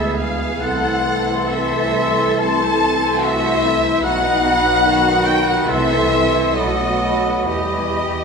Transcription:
0.00 0.61 D2 medium
0.00 0.57 E3 medium
0.00 0.45 G#3 medium
0.00 0.20 B3 medium
0.00 0.45 B3 medium
0.00 0.59 G#4 medium
0.00 0.19 A4 medium
0.00 0.20 B4 medium
0.00 0.18 E5 loud
0.00 0.18 E5 medium
0.00 0.21 E5 medium
0.00 0.38 B5 medium
0.19 0.40 G#3 medium
0.19 0.60 G#4 medium
0.19 0.41 G#4 medium
0.19 0.61 F5 medium
0.19 0.49 F5 medium
0.19 0.61 F5 medium
0.40 0.61 B3 medium
0.40 0.62 B4 medium
0.59 4.00 C2 medium
0.59 4.55 E3 medium
0.59 1.46 A3 medium
0.59 0.81 C4 medium
0.59 1.46 E4 medium
0.59 3.74 A4 medium
0.59 0.81 A4 medium
0.59 1.04 A4 medium
0.59 1.18 F#5 medium
0.59 1.47 F#5 loud
0.59 1.46 F#5 medium
0.59 4.00 C6 medium
0.83 1.04 E4 medium
0.83 1.04 C5 medium
1.02 1.25 C4 medium
1.02 1.25 A4 medium
1.02 3.20 A4 medium
1.24 1.46 E4 medium
1.24 1.46 C5 medium
1.47 2.37 A3 medium
1.47 1.67 C4 medium
1.47 2.37 E4 medium
1.47 1.67 A4 medium
1.47 2.37 E5 medium
1.47 2.41 E5 loud
1.51 2.41 E5 loud
1.69 1.92 E4 medium
1.69 1.93 C5 medium
1.93 2.16 C4 medium
1.93 2.16 A4 medium
2.17 2.39 E4 medium
2.17 2.39 C5 medium
2.39 3.23 A3 medium
2.39 2.60 C4 medium
2.39 3.22 E4 medium
2.39 2.59 A4 medium
2.39 3.24 A5 loud
2.39 3.25 A5 loud
2.61 2.82 E4 medium
2.61 2.83 C5 medium
2.81 3.03 C4 medium
2.81 3.02 A4 medium
3.03 3.24 E4 medium
3.03 3.24 C5 medium
3.22 4.03 A3 medium
3.22 3.43 C4 medium
3.22 4.03 E4 medium
3.22 3.64 F#4 loud
3.22 3.43 A4 medium
3.22 4.02 E5 loud
3.22 4.05 E5 loud
3.46 3.65 E4 medium
3.46 3.65 C5 medium
3.63 3.84 C4 medium
3.63 4.05 E4 medium
3.63 3.84 A4 medium
3.85 4.04 E4 medium
3.85 4.04 C5 medium
4.02 5.65 B1 loud
4.02 5.68 F#3 loud
4.02 4.23 B3 medium
4.02 5.64 D#4 loud
4.02 4.85 D#4 loud
4.02 5.69 F#4 loud
4.02 4.23 F#4 medium
4.02 5.26 F#5 loud
4.02 5.27 F#5 loud
4.02 5.25 F#5 loud
4.02 5.68 B5 loud
4.24 4.44 D#4 medium
4.24 4.44 B4 medium
4.45 4.65 B3 medium
4.45 4.65 F#4 medium
4.63 4.85 D#4 medium
4.63 4.85 B4 medium
4.85 5.70 D#3 medium
4.85 5.04 B3 medium
4.85 5.05 F#4 medium
4.85 5.67 F#4 loud
5.06 5.27 D#4 medium
5.06 5.27 B4 medium
5.25 5.47 B3 medium
5.25 5.47 F#4 medium
5.25 5.47 G5 loud
5.25 5.50 G5 loud
5.25 5.48 G5 loud
5.44 5.69 D#4 medium
5.44 5.67 F#5 loud
5.49 5.69 B4 medium
5.49 5.72 F#5 loud
5.49 5.69 F#5 loud
5.64 7.49 A4 loud
5.64 6.54 E5 loud
5.64 6.56 E5 loud
5.69 6.55 C2 medium
5.69 6.55 E3 medium
5.69 6.39 A3 medium
5.69 5.89 C4 medium
5.69 6.39 E4 medium
5.69 5.89 A4 medium
5.69 6.12 A4 medium
5.69 6.57 E5 loud
5.69 6.56 C6 medium
5.91 6.12 E4 medium
5.91 6.12 C5 medium
6.12 6.35 C4 medium
6.12 6.55 E4 medium
6.12 6.34 A4 medium
6.34 6.57 E4 medium
6.34 6.56 C5 medium
6.52 7.48 F#3 medium
6.52 7.47 D#5 medium
6.52 7.48 D#5 medium
6.56 7.50 B1 medium
6.56 7.48 A3 medium
6.56 6.78 A3 medium
6.56 7.48 F#4 medium
6.56 6.78 A4 medium
6.56 7.47 D#5 loud
6.56 8.24 B5 medium
6.81 7.03 B3 medium
6.81 7.03 B4 medium
7.04 7.26 A3 medium
7.04 7.26 A4 medium
7.27 7.50 B3 medium
7.27 7.50 B4 medium
7.47 8.24 E2 medium
7.47 8.24 E3 medium
7.47 8.24 G3 medium
7.47 8.24 G4 medium
7.47 8.24 D#5 medium
7.47 8.24 D#5 loud
7.47 8.15 D#5 medium
7.51 7.73 G3 medium
7.51 8.24 G4 medium
7.51 7.73 G4 medium
7.76 7.99 B3 medium
7.76 8.00 E4 medium
8.02 8.24 G3 medium
8.02 8.24 G4 medium

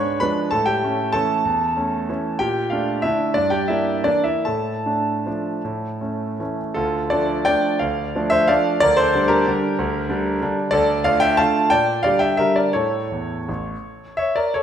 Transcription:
0.00 0.23 G#2 medium
0.00 0.19 G#3 soft
0.00 0.19 D4 soft
0.00 0.21 B4 medium
0.00 0.19 C#5 medium
0.00 0.20 B5 medium
0.00 0.21 C#6 medium
0.20 0.49 F3 soft
0.20 0.50 G#3 soft
0.20 0.50 D4 soft
0.20 0.50 B4 medium
0.20 0.52 B5 loud
0.51 0.82 A2 medium
0.51 0.66 A4 medium
0.51 0.67 A5 medium
0.66 1.11 G4 medium
0.66 1.13 G5 medium
0.83 1.11 A3 soft
0.83 1.12 C#4 medium
1.12 1.42 E3 soft
1.12 1.42 A3 soft
1.12 1.42 C#4 soft
1.12 2.36 A4 medium
1.12 2.40 A5 loud
1.45 1.75 E2 medium
1.77 2.06 A3 soft
1.77 2.06 C#4 soft
2.09 2.38 E3 soft
2.09 2.38 A3 soft
2.09 2.38 C#4 soft
2.39 2.72 A#2 medium
2.39 2.70 G4 medium
2.39 2.71 G5 medium
2.70 3.01 A3 soft
2.70 3.02 D4 soft
2.70 3.02 F4 medium
2.70 3.04 F5 medium
3.02 3.33 D3 soft
3.02 3.33 A3 soft
3.02 3.34 D4 soft
3.02 3.34 E4 medium
3.02 3.35 E5 medium
3.34 3.69 G2 medium
3.34 3.51 D4 medium
3.34 3.52 D5 medium
3.50 3.68 G4 medium
3.50 3.69 G5 medium
3.68 4.03 A#3 soft
3.68 4.03 D4 soft
3.68 4.03 E4 medium
3.68 4.05 E5 medium
4.04 4.43 E3 soft
4.04 4.43 A#3 soft
4.04 4.25 D4 medium
4.04 4.26 D5 medium
4.24 4.45 E4 medium
4.24 4.46 E5 medium
4.45 4.85 A2 soft
4.45 6.55 A4 medium
4.45 6.58 A5 medium
4.86 5.22 A3 soft
4.86 5.23 D4 soft
5.26 5.60 F3 soft
5.26 5.61 A3 soft
5.26 5.61 D4 soft
5.65 6.00 A2 soft
6.01 6.36 A3 soft
6.01 6.36 C#4 soft
6.40 6.73 E3 soft
6.40 6.73 A3 soft
6.40 6.74 C#4 soft
6.74 7.11 D2 medium
6.74 7.09 F4 medium
6.74 7.09 A4 medium
7.10 7.44 F3 soft
7.10 7.44 A3 soft
7.10 7.44 D4 soft
7.10 7.44 A4 medium
7.10 7.44 D5 medium
7.45 7.78 F3 soft
7.45 7.79 A3 soft
7.45 7.79 D4 medium
7.45 7.79 D5 medium
7.45 7.81 G5 loud
7.79 8.14 D2 medium
7.79 8.28 D5 medium
7.79 8.31 F5 medium
8.15 8.47 F3 medium
8.15 8.47 A3 soft
8.15 8.47 D4 medium
8.30 8.48 C5 medium
8.30 8.49 E5 loud
8.48 8.79 F3 medium
8.48 8.80 A3 soft
8.48 8.80 D4 medium
8.48 8.79 D5 medium
8.48 8.81 F5 loud
8.80 9.14 D2 medium
8.80 8.97 A#4 medium
8.80 8.97 D5 loud
8.97 9.28 A4 medium
8.97 9.29 C5 loud
9.15 9.44 D3 medium
9.15 9.44 G3 medium
9.15 9.44 D4 medium
9.28 10.53 G4 medium
9.28 10.56 A#4 loud
9.47 9.75 D3 medium
9.47 9.75 G3 medium
9.47 9.76 D4 medium
9.79 10.08 D2 medium
10.09 10.38 D3 medium
10.09 10.38 G3 medium
10.09 10.39 D4 medium
10.42 10.70 D3 medium
10.42 10.70 G3 medium
10.42 10.71 D4 medium
10.71 11.04 D2 medium
10.71 11.02 A4 medium
10.71 11.04 D5 loud
11.04 11.36 D3 medium
11.04 11.36 A3 medium
11.04 11.36 F4 medium
11.04 11.21 D5 medium
11.04 11.21 F5 loud
11.20 11.37 E5 medium
11.20 11.38 G5 loud
11.37 11.69 D3 medium
11.37 11.69 A3 medium
11.37 11.70 F4 medium
11.37 11.70 F5 medium
11.37 11.71 A5 loud
11.70 12.04 A#2 medium
11.70 12.02 D5 medium
11.70 12.04 G5 loud
12.03 12.36 D3 soft
12.03 12.36 G3 soft
12.03 12.36 G4 medium
12.03 12.20 D5 medium
12.03 12.21 F5 loud
12.19 12.36 E5 medium
12.19 12.38 G5 medium
12.37 12.71 D3 soft
12.37 12.71 G3 soft
12.37 12.71 G4 soft
12.37 12.55 A#4 medium
12.37 12.56 E5 loud
12.56 12.73 A#4 medium
12.56 12.74 D5 medium
12.73 13.01 A2 soft
12.73 13.04 A3 soft
12.73 13.04 E4 soft
12.73 14.16 A4 medium
12.73 14.17 C#5 medium
13.12 13.38 E2 soft
13.49 13.74 A1 medium
14.17 14.36 C#5 medium
14.17 14.37 E5 medium
14.36 14.55 A#4 medium
14.36 14.55 D5 medium
14.54 14.63 A4 medium
14.54 14.63 C#5 medium

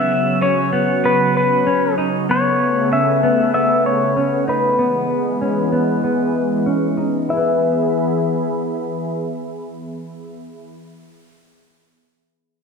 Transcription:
0.00 2.25 C#3 medium
0.00 2.26 F#3 medium
0.00 0.41 B3 medium
0.00 2.25 C#4 medium
0.00 0.42 E5 medium
0.41 0.72 C#4 medium
0.41 1.06 C#5 medium
0.73 1.03 B3 medium
1.04 1.66 B3 medium
1.04 1.36 B4 medium
1.37 1.94 B4 medium
1.67 1.97 C#4 medium
1.98 2.29 D#4 medium
2.29 4.76 C#3 medium
2.29 4.76 A3 medium
2.29 2.91 B3 medium
2.29 7.25 B3 medium
2.29 2.94 C#5 medium
2.92 3.23 C#4 medium
2.92 3.53 E5 medium
3.23 3.53 B3 medium
3.54 4.16 B3 medium
3.54 3.86 E5 medium
3.86 4.44 C#5 medium
4.17 4.47 C#4 medium
4.48 4.78 D#4 medium
4.48 6.63 B4 medium
4.79 7.27 E3 medium
4.79 7.27 G#3 medium
4.79 5.41 B3 medium
5.41 5.72 C#4 medium
5.72 6.03 B3 medium
6.04 6.66 B3 medium
6.66 6.97 C#4 medium
6.97 7.29 D#4 medium
7.29 10.55 E3 medium
7.29 10.55 B3 medium
7.29 7.41 E4 medium
7.29 10.55 G#4 medium
7.29 10.55 E5 medium
7.29 10.55 B5 medium
7.33 11.02 G#4 medium
7.33 11.06 B4 medium
7.41 11.10 E5 medium

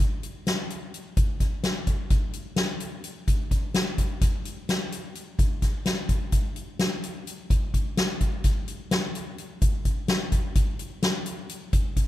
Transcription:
0.00 kick medium
0.00 closed hi-hat medium
0.23 closed hi-hat medium
0.47 snare medium
0.47 closed hi-hat medium
0.70 closed hi-hat medium
0.94 closed hi-hat medium
1.17 kick medium
1.17 closed hi-hat medium
1.40 kick medium
1.40 snare soft
1.40 closed hi-hat medium
1.63 snare medium
1.63 closed hi-hat medium
1.87 kick medium
1.87 closed hi-hat medium
2.10 kick medium
2.10 closed hi-hat medium
2.33 closed hi-hat medium
2.56 snare loud
2.56 closed hi-hat medium
2.80 closed hi-hat medium
3.04 closed hi-hat medium
3.28 kick medium
3.28 closed hi-hat medium
3.51 kick medium
3.51 closed hi-hat medium
3.74 snare loud
3.74 closed hi-hat medium
3.98 kick medium
3.98 closed hi-hat medium
4.21 kick medium
4.21 snare soft
4.21 closed hi-hat medium
4.45 closed hi-hat medium
4.69 snare medium
4.69 closed hi-hat medium
4.92 closed hi-hat medium
5.15 closed hi-hat medium
5.39 kick medium
5.39 closed hi-hat medium
5.62 kick medium
5.62 snare soft
5.62 closed hi-hat medium
5.86 snare medium
5.86 closed hi-hat medium
6.09 kick medium
6.09 closed hi-hat medium
6.32 kick medium
6.32 closed hi-hat medium
6.56 closed hi-hat medium
6.79 snare loud
6.79 closed hi-hat medium
7.03 closed hi-hat medium
7.27 closed hi-hat medium
7.50 kick medium
7.50 closed hi-hat medium
7.74 kick medium
7.74 closed hi-hat medium
7.97 snare loud
7.97 closed hi-hat medium
8.21 kick medium
8.21 closed hi-hat medium
8.44 kick medium
8.44 snare soft
8.44 closed hi-hat medium
8.68 closed hi-hat medium
8.91 snare loud
8.91 closed hi-hat medium
9.15 closed hi-hat medium
9.38 closed hi-hat medium
9.62 kick loud
9.62 closed hi-hat medium
9.85 kick medium
9.85 closed hi-hat medium
10.08 snare loud
10.08 closed hi-hat medium
10.32 kick medium
10.32 closed hi-hat medium
10.55 kick medium
10.55 closed hi-hat medium
10.79 closed hi-hat medium
11.03 snare loud
11.03 closed hi-hat medium
11.26 closed hi-hat medium
11.49 closed hi-hat medium
11.73 kick medium
11.73 closed hi-hat medium
11.96 kick medium
11.96 closed hi-hat medium

